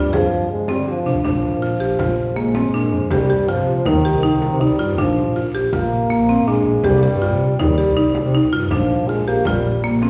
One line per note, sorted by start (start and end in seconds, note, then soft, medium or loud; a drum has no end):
0.00 0.21 G2 medium
0.00 0.16 G3 medium
0.13 0.51 F3 medium
0.13 0.32 G#4 medium
0.13 frame drum medium
0.51 0.72 G#3 medium
0.51 frame drum soft
0.68 0.88 G3 medium
0.68 0.88 C4 medium
0.68 frame drum soft
0.78 1.04 D3 medium
0.89 1.23 F3 medium
1.05 1.16 C3 medium
1.05 1.16 D4 medium
1.15 1.24 D2 medium
1.24 1.54 A#1 medium
1.24 2.38 F3 medium
1.24 1.44 D4 medium
1.24 frame drum soft
1.52 1.78 A#2 medium
1.62 1.72 F4 medium
1.80 1.89 A#1 medium
1.80 1.90 G4 medium
1.99 2.16 A#1 medium
1.99 2.19 F4 medium
1.99 frame drum medium
2.36 3.11 G#3 medium
2.36 2.46 A#3 medium
2.46 2.66 A#1 medium
2.55 2.65 C4 medium
2.55 frame drum medium
2.65 2.73 G1 medium
2.74 2.94 A#2 medium
2.74 2.93 D4 medium
2.92 3.10 F2 medium
3.10 3.37 C2 medium
3.10 3.51 G3 medium
3.10 3.21 G4 medium
3.10 frame drum medium
3.30 3.40 G4 medium
3.39 3.59 G2 medium
3.49 3.88 F3 medium
3.49 3.68 F4 medium
3.58 3.75 C3 medium
3.85 4.12 D#2 medium
3.85 4.63 D#3 medium
3.85 3.96 D#4 medium
3.85 frame drum medium
4.05 4.14 G4 medium
4.14 4.31 C2 medium
4.23 4.42 D#4 medium
4.32 4.41 C2 medium
4.42 frame drum soft
4.51 4.68 C3 medium
4.61 4.97 G3 medium
4.61 4.71 D#4 medium
4.70 4.78 C2 medium
4.79 5.00 G2 medium
4.79 4.89 F4 medium
4.98 5.28 A#1 medium
4.98 5.42 F3 medium
4.98 5.17 D4 medium
4.98 frame drum medium
5.26 5.52 A#2 medium
5.36 5.45 F4 medium
5.54 5.63 A#1 medium
5.54 5.64 G4 medium
5.73 5.90 A#1 medium
5.73 6.49 A#3 medium
5.73 5.92 F4 medium
5.73 frame drum medium
6.10 6.20 A#3 medium
6.20 6.39 A#1 medium
6.29 6.39 C4 medium
6.38 6.46 G1 medium
6.47 6.68 A#2 medium
6.47 6.87 G#3 loud
6.47 6.67 D4 medium
6.66 6.83 A#1 medium
6.84 7.10 C2 loud
6.84 7.57 G3 medium
6.84 6.94 G4 medium
6.84 frame drum medium
7.03 7.13 G4 medium
7.13 7.33 G2 medium
7.22 7.41 F4 medium
7.32 7.49 C3 medium
7.58 7.85 D#2 medium
7.58 8.48 G3 medium
7.58 7.69 D#4 medium
7.58 frame drum medium
7.78 7.87 G4 medium
7.88 8.05 C2 medium
7.97 8.16 D#4 medium
8.06 8.15 C2 medium
8.15 frame drum soft
8.25 8.42 C3 medium
8.34 8.44 D#4 medium
8.34 frame drum soft
8.44 8.52 C2 medium
8.53 8.73 G2 medium
8.53 8.62 F4 medium
8.71 9.01 A#1 medium
8.71 9.09 F3 medium
8.71 8.91 D4 medium
8.71 frame drum medium
9.00 9.25 A#2 medium
9.08 9.27 G#3 medium
9.08 9.19 F4 medium
9.28 9.36 A#1 medium
9.28 9.48 A#3 medium
9.28 9.37 G4 medium
9.45 9.63 A#1 medium
9.45 9.94 G3 medium
9.45 9.66 F4 medium
9.45 frame drum medium
9.84 9.93 A#3 medium
9.92 10.10 A#1 medium
10.02 10.10 C4 medium
10.02 frame drum soft